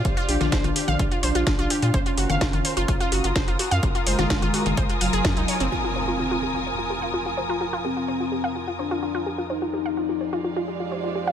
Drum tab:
HH |xxoxxxoxxxoxxxox|xxoxxxoxxxoxxxox|xxoxxxoxxxoxxxox|----------------|
SD |---oo-------o---|----o-------o---|---oo-------o---|----------------|
CG |---O-O-O--------|---O-O----------|---O-O-O--------|----------------|
BD |o---o---o---o---|o---o---o---o---|o---o---o---o---|----------------|

HH |----------------|----------------|
SD |----------------|----------------|
CG |----------------|----------------|
BD |----------------|----------------|